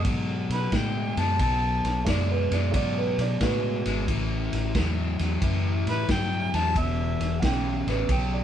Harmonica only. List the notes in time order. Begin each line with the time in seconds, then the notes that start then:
0.53 B4
0.75 G5
1.19 A5
1.41 A5
5.89 B4
6.11 G5
6.56 A5
6.78 E5